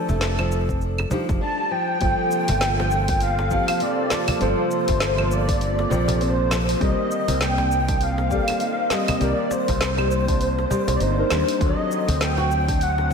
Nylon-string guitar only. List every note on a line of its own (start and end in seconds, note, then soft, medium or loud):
0.09 0.16 A3 medium
0.39 0.67 F3 medium
0.69 0.80 C4 medium
1.11 1.40 F3 loud
1.41 1.70 D4 medium
1.71 2.00 F3 medium
2.01 2.47 F3 loud
2.49 2.56 A3 medium
2.79 3.07 F3 medium
3.09 3.20 A#3 medium
3.51 3.80 F3 loud
3.81 4.10 C4 medium
4.11 4.40 F3 medium
4.41 4.87 F3 loud
4.88 4.95 A3 medium
5.18 5.47 F3 medium
5.48 5.60 A#3 medium
5.90 6.19 F3 loud
6.20 6.49 C4 medium
6.51 6.80 F3 medium
6.81 7.27 G3 loud
7.29 7.36 C4 medium
7.59 7.87 G3 medium
7.88 8.00 D4 medium
8.31 8.60 G3 loud
8.61 8.89 D#4 medium
8.91 9.20 G3 medium
9.21 9.67 G3 loud
9.68 9.75 C4 medium
9.98 10.27 G3 medium
10.28 10.40 D4 medium
10.70 10.99 G3 loud
11.00 11.29 D#4 medium
11.30 11.59 G3 medium
11.60 12.07 F#3 loud
12.08 12.15 C4 medium
12.38 12.50 F#4 loud
12.68 12.80 D4 medium
13.10 13.13 F#3 medium